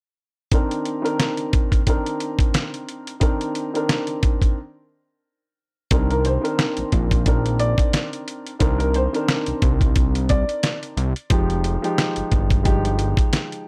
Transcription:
0.52 1.00 D#3 medium
0.52 1.00 C4 medium
0.52 1.01 D4 medium
0.52 1.01 A#4 loud
0.52 kick loud
0.52 closed hi-hat medium
0.71 closed hi-hat medium
0.85 closed hi-hat medium
1.02 1.79 D#3 medium
1.02 1.80 C4 medium
1.02 1.80 D4 medium
1.02 1.81 A#4 loud
1.02 closed hi-hat soft
1.20 snare loud
1.20 closed hi-hat medium
1.37 closed hi-hat medium
1.53 kick medium
1.53 closed hi-hat medium
1.72 kick medium
1.72 closed hi-hat medium
1.87 3.12 D#3 medium
1.87 3.12 C4 medium
1.87 3.13 D4 medium
1.87 3.13 A#4 loud
1.87 kick medium
1.87 closed hi-hat medium
2.06 closed hi-hat medium
2.20 closed hi-hat medium
2.39 kick medium
2.39 closed hi-hat medium
2.54 snare loud
2.54 closed hi-hat loud
2.74 closed hi-hat soft
2.89 closed hi-hat medium
3.07 closed hi-hat medium
3.20 3.69 D#3 medium
3.20 3.69 C4 medium
3.20 3.70 D4 medium
3.20 3.70 A#4 loud
3.20 kick loud
3.20 closed hi-hat medium
3.41 closed hi-hat medium
3.55 closed hi-hat medium
3.74 4.56 D#3 medium
3.74 4.56 C4 medium
3.74 4.57 D4 medium
3.74 4.57 A#4 medium
3.74 closed hi-hat soft
3.89 snare loud
3.89 closed hi-hat medium
4.07 closed hi-hat medium
4.23 kick medium
4.23 closed hi-hat medium
4.42 kick medium
4.42 closed hi-hat medium
5.91 6.38 C2 loud
5.91 6.39 D#3 medium
5.91 6.40 C4 medium
5.91 6.40 D4 medium
5.91 6.41 A#4 loud
5.91 kick loud
5.91 closed hi-hat medium
6.10 6.23 A#4 medium
6.10 closed hi-hat medium
6.25 7.56 C5 medium
6.25 closed hi-hat medium
6.41 7.19 D#3 medium
6.41 7.19 C4 medium
6.41 7.20 D4 medium
6.41 7.20 A#4 loud
6.41 closed hi-hat soft
6.59 snare loud
6.59 closed hi-hat medium
6.77 6.84 A#1 soft
6.77 closed hi-hat medium
6.92 7.75 A#1 medium
6.92 kick medium
6.92 closed hi-hat medium
7.11 kick medium
7.11 closed hi-hat medium
7.26 8.51 D#3 medium
7.26 8.52 C4 medium
7.26 8.52 D4 medium
7.26 8.53 A#4 loud
7.26 kick loud
7.26 closed hi-hat medium
7.46 closed hi-hat medium
7.59 8.09 D5 medium
7.59 closed hi-hat medium
7.78 kick medium
7.78 closed hi-hat medium
7.93 snare loud
7.93 closed hi-hat loud
8.13 closed hi-hat medium
8.28 closed hi-hat medium
8.47 closed hi-hat medium
8.59 9.08 C2 loud
8.59 9.08 D#3 medium
8.59 9.09 C4 medium
8.59 9.09 D4 medium
8.59 9.10 A#4 loud
8.59 kick loud
8.59 closed hi-hat medium
8.79 8.92 A#4 medium
8.79 closed hi-hat medium
8.94 10.26 C5 medium
8.94 closed hi-hat medium
9.13 10.97 D#3 medium
9.13 10.98 C4 medium
9.13 10.98 D4 medium
9.13 10.98 A#4 loud
9.13 closed hi-hat soft
9.29 snare loud
9.29 closed hi-hat medium
9.46 9.53 C2 soft
9.46 closed hi-hat medium
9.62 10.45 C2 medium
9.62 kick medium
9.62 closed hi-hat medium
9.81 kick medium
9.81 closed hi-hat medium
9.96 kick loud
9.96 closed hi-hat medium
10.15 closed hi-hat medium
10.29 10.79 D5 medium
10.29 kick medium
10.29 closed hi-hat medium
10.49 closed hi-hat medium
10.63 snare loud
10.63 closed hi-hat loud
10.83 closed hi-hat soft
10.97 11.14 C2 loud
10.97 closed hi-hat medium
11.16 closed hi-hat medium
11.30 11.77 F1 loud
11.30 11.78 F3 medium
11.30 11.79 G#3 medium
11.30 11.79 D#4 medium
11.30 11.80 G4 loud
11.30 kick loud
11.30 closed hi-hat medium
11.50 closed hi-hat medium
11.64 closed hi-hat medium
11.82 12.59 F3 medium
11.82 12.59 G#3 medium
11.82 12.60 D#4 medium
11.82 12.60 G4 loud
11.82 closed hi-hat medium
11.98 snare loud
11.98 closed hi-hat medium
12.16 12.23 G1 soft
12.16 closed hi-hat medium
12.32 13.14 G1 medium
12.32 kick loud
12.32 closed hi-hat medium
12.50 kick medium
12.50 closed hi-hat medium
12.63 13.68 F3 medium
12.63 13.68 G#3 medium
12.63 13.68 D#4 medium
12.63 13.68 G4 loud
12.63 kick loud
12.63 closed hi-hat medium
12.85 closed hi-hat medium
12.99 closed hi-hat medium
13.17 kick medium
13.17 closed hi-hat medium
13.33 snare loud
13.33 closed hi-hat loud
13.52 closed hi-hat soft

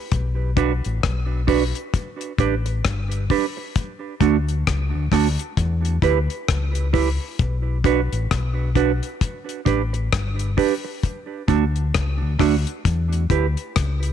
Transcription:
0.12 0.80 B1 medium
0.12 kick loud
0.12 closed hi-hat medium
0.57 0.71 D4 medium
0.57 0.72 F#4 medium
0.57 0.72 B4 medium
0.57 kick loud
0.57 closed hi-hat medium
0.84 1.02 A1 medium
0.84 closed hi-hat soft
1.03 1.71 B1 medium
1.03 kick loud
1.03 cross-stick loud
1.03 closed hi-hat medium
1.47 1.62 D4 medium
1.47 1.62 F#4 medium
1.47 1.63 B4 medium
1.47 kick medium
1.47 open hi-hat medium
1.75 closed hi-hat soft
1.94 kick loud
1.94 closed hi-hat medium
2.21 closed hi-hat medium
2.38 2.81 A1 medium
2.38 2.54 D4 medium
2.38 2.54 G4 medium
2.38 2.54 B4 medium
2.38 kick medium
2.38 closed hi-hat medium
2.66 muted clean electric guitar stroke soft
2.66 closed hi-hat soft
2.85 3.27 G1 medium
2.85 kick loud
2.85 cross-stick loud
2.85 closed hi-hat medium
3.11 closed hi-hat medium
3.30 3.45 D4 medium
3.30 3.45 G4 medium
3.30 3.45 B4 medium
3.30 kick medium
3.30 open hi-hat medium
3.57 muted clean electric guitar stroke soft
3.76 kick loud
3.76 closed hi-hat medium
4.20 4.63 D2 medium
4.20 4.35 A3 medium
4.20 4.36 D4 medium
4.20 4.36 F#4 medium
4.20 kick loud
4.20 closed hi-hat medium
4.49 closed hi-hat soft
4.67 4.91 C#2 medium
4.67 kick loud
4.67 cross-stick loud
4.67 closed hi-hat medium
4.95 5.11 D2 medium
5.12 5.36 D2 loud
5.12 5.26 A3 medium
5.12 5.27 D4 medium
5.12 5.27 F#4 medium
5.12 kick medium
5.12 cross-stick medium
5.12 open hi-hat medium
5.39 closed hi-hat medium
5.57 5.99 E2 loud
5.57 kick loud
5.57 closed hi-hat loud
5.85 closed hi-hat medium
6.02 6.27 D2 medium
6.02 6.17 E4 medium
6.02 6.18 G4 medium
6.02 6.18 B4 medium
6.02 kick medium
6.02 closed hi-hat medium
6.30 closed hi-hat soft
6.48 7.17 C#2 medium
6.48 kick loud
6.48 cross-stick loud
6.48 closed hi-hat medium
6.75 closed hi-hat medium
6.93 7.08 E4 medium
6.93 7.08 G4 medium
6.93 7.08 B4 medium
6.93 kick medium
6.93 open hi-hat medium
7.39 8.08 B1 medium
7.39 kick loud
7.39 closed hi-hat medium
7.84 7.99 D4 medium
7.84 7.99 F#4 medium
7.84 8.00 B4 medium
7.84 kick loud
7.84 closed hi-hat medium
8.12 8.29 A1 medium
8.12 closed hi-hat soft
8.31 8.99 B1 medium
8.31 kick loud
8.31 cross-stick loud
8.31 closed hi-hat medium
8.75 8.90 D4 medium
8.75 8.91 F#4 medium
8.75 8.91 B4 loud
8.75 kick medium
8.75 closed hi-hat medium
9.03 closed hi-hat medium
9.21 kick loud
9.21 closed hi-hat loud
9.49 closed hi-hat medium
9.65 10.08 A1 medium
9.65 9.81 D4 medium
9.65 9.81 G4 medium
9.65 9.82 B4 medium
9.65 kick medium
9.65 closed hi-hat medium
9.93 muted clean electric guitar stroke soft
9.93 closed hi-hat soft
10.12 10.55 G1 medium
10.12 kick loud
10.12 cross-stick loud
10.12 closed hi-hat medium
10.39 closed hi-hat medium
10.57 10.72 D4 medium
10.57 10.73 G4 medium
10.57 10.73 B4 medium
10.57 kick medium
10.57 open hi-hat medium
10.84 muted clean electric guitar stroke soft
11.03 kick medium
11.03 closed hi-hat medium
11.48 11.91 D2 medium
11.48 11.63 A3 medium
11.48 11.63 D4 medium
11.48 11.64 F#4 medium
11.48 kick loud
11.48 closed hi-hat medium
11.76 closed hi-hat soft
11.94 12.19 C#2 medium
11.94 kick loud
11.94 cross-stick loud
11.94 closed hi-hat loud
12.22 12.39 D2 medium
12.39 12.64 D2 loud
12.39 12.54 A3 medium
12.39 12.54 D4 medium
12.39 12.55 F#4 medium
12.39 kick medium
12.39 cross-stick medium
12.39 open hi-hat medium
12.67 closed hi-hat soft
12.85 13.27 E2 medium
12.85 kick loud
12.85 closed hi-hat loud
13.13 closed hi-hat medium
13.30 13.55 D2 medium
13.30 13.45 E4 medium
13.30 13.46 G4 medium
13.30 13.46 B4 medium
13.30 kick medium
13.30 closed hi-hat medium
13.57 closed hi-hat soft
13.76 14.13 C#2 medium
13.76 kick loud
13.76 cross-stick loud
13.76 closed hi-hat medium
14.03 closed hi-hat medium

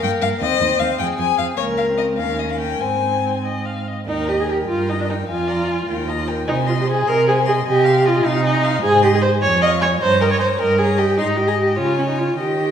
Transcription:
0.00 0.10 G2 medium
0.00 0.21 A#3 medium
0.00 0.41 A#4 medium
0.00 0.11 G5 medium
0.22 0.29 G2 medium
0.22 0.41 A#3 medium
0.22 0.29 F5 medium
0.40 0.49 D#2 medium
0.40 0.60 C4 medium
0.40 0.99 C5 medium
0.40 0.81 D#5 loud
0.60 0.68 D#2 medium
0.60 0.79 C4 medium
0.80 0.88 D#2 medium
0.80 0.99 C4 medium
0.80 0.99 F5 medium
0.99 1.07 F2 medium
0.99 1.18 C4 medium
0.99 1.57 G#4 medium
0.99 1.07 G5 medium
1.18 1.26 F2 medium
1.18 1.37 C4 soft
1.18 1.38 G#5 medium
1.38 1.46 F2 medium
1.38 1.57 C4 soft
1.38 1.46 F5 medium
1.57 2.20 C#2 medium
1.57 1.90 A#3 medium
1.57 2.17 A#4 medium
1.57 1.65 C#5 medium
1.77 1.85 F5 medium
1.88 2.21 C4 medium
1.98 2.06 D#5 medium
2.18 2.81 D#2 medium
2.18 2.84 C#4 medium
2.18 2.82 A#4 medium
2.18 2.41 F5 medium
2.39 2.50 D#5 medium
2.52 2.60 F5 medium
2.61 2.82 G5 medium
2.80 3.85 G#2 soft
2.80 3.87 C4 soft
2.80 3.40 C5 medium
2.80 3.45 G#5 medium
3.45 3.67 D#5 soft
3.65 3.89 F5 soft
3.87 4.06 D#5 soft
4.07 4.62 D#2 medium
4.07 4.29 D#4 medium
4.07 4.30 A#4 medium
4.07 4.30 G5 soft
4.28 4.42 G4 medium
4.28 4.50 D#5 soft
4.28 4.51 A#5 soft
4.40 4.48 G#4 medium
4.48 4.57 G4 medium
4.48 4.66 A#4 soft
4.48 4.69 G5 soft
4.67 5.22 G2 medium
4.67 4.90 F4 medium
4.67 4.90 A#4 soft
4.67 4.92 G5 soft
4.89 4.99 D#4 medium
4.89 5.10 D#5 medium
4.89 5.12 A#5 soft
5.00 5.03 D4 medium
5.09 5.17 D#4 medium
5.09 5.27 A#4 soft
5.09 5.28 G5 soft
5.27 5.81 F2 medium
5.27 6.26 F4 medium
5.27 5.49 F5 medium
5.27 5.51 G#5 medium
5.48 5.69 D5 medium
5.48 5.72 A#5 soft
5.68 5.87 F5 soft
5.68 5.89 G#5 soft
5.87 6.40 D#2 medium
5.87 6.10 A#4 soft
5.87 6.11 G5 medium
6.08 6.29 D#5 medium
6.08 6.30 A#5 medium
6.27 6.47 A#4 medium
6.27 6.47 G5 medium
6.47 7.00 C3 medium
6.47 6.56 D#4 medium
6.47 6.68 C5 medium
6.47 6.69 G#5 medium
6.66 6.72 F4 medium
6.66 6.88 D#5 medium
6.66 6.90 C6 medium
6.80 6.84 G4 medium
6.86 7.10 G#4 medium
6.86 7.09 C5 medium
6.86 7.09 G#5 medium
7.07 7.59 C3 medium
7.07 7.27 A#4 loud
7.07 7.25 D#5 medium
7.07 7.26 C6 medium
7.25 7.35 G#4 medium
7.25 7.47 C5 medium
7.25 7.47 G#5 medium
7.46 7.56 G#4 medium
7.46 7.65 D#5 medium
7.46 7.66 C6 medium
7.66 8.18 C3 medium
7.66 8.08 G4 loud
7.66 7.86 D#5 medium
7.66 7.87 G#5 medium
7.84 8.06 F5 medium
7.84 8.07 C6 medium
8.05 8.27 F4 medium
8.05 8.26 D#5 medium
8.05 8.27 G#5 medium
8.24 8.77 C3 medium
8.24 8.84 D#4 loud
8.24 8.44 F5 medium
8.24 8.44 C6 medium
8.44 8.65 D#5 medium
8.44 8.66 G#5 medium
8.64 8.83 F5 medium
8.64 8.83 C6 medium
8.83 9.35 G#2 medium
8.83 9.03 G#4 loud
8.83 9.03 C5 medium
8.83 9.04 G#5 medium
9.02 9.07 G4 medium
9.02 9.23 D#5 medium
9.02 9.23 C6 medium
9.14 9.18 G#4 medium
9.21 9.29 C5 medium
9.21 9.41 C5 medium
9.21 9.40 G#5 medium
9.41 9.95 F2 medium
9.41 9.61 C#5 loud
9.41 9.63 C#5 medium
9.41 9.63 G#5 medium
9.62 9.70 D#5 loud
9.62 9.83 F5 medium
9.62 9.82 C#6 medium
9.80 9.89 C#5 loud
9.80 10.00 C#5 medium
9.80 10.01 G#5 medium
10.01 10.53 G2 medium
10.01 10.20 C5 loud
10.01 10.23 C#5 medium
10.01 10.22 A#5 medium
10.21 10.25 A#4 medium
10.21 10.43 D#5 medium
10.21 10.41 G5 medium
10.31 10.39 C#5 medium
10.39 10.48 C5 medium
10.39 10.62 C#5 medium
10.39 10.60 A#5 medium
10.59 11.12 G2 medium
10.59 10.79 A#4 loud
10.59 10.80 D#5 medium
10.59 10.77 G5 medium
10.78 10.98 G#4 medium
10.78 10.99 C#5 medium
10.78 11.00 A#5 medium
10.97 11.19 G4 medium
10.97 11.16 D#5 medium
10.97 11.18 G5 medium
11.17 11.80 G#2 medium
11.17 11.38 D#4 medium
11.17 11.78 D#5 medium
11.17 11.26 C6 medium
11.37 11.49 G4 medium
11.48 11.57 G#4 medium
11.48 11.56 A#5 medium
11.58 11.77 G4 medium
11.76 12.39 C#3 medium
11.76 12.00 F4 medium
11.76 12.38 C#5 medium
11.76 12.38 G#5 medium
11.99 12.08 C#4 medium
12.08 12.20 D#4 medium
12.18 12.39 F4 medium
12.39 12.71 D#3 medium
12.39 12.71 G4 medium
12.39 12.71 D#5 medium
12.39 12.71 G5 medium

